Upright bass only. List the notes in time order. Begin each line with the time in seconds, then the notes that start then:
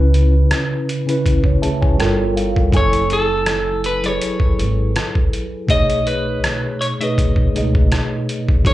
Already playing: C#2
1.63 D2
2.00 G1
2.73 F#1
4.59 G#1
5.69 B1
7.56 C#2
8.66 E2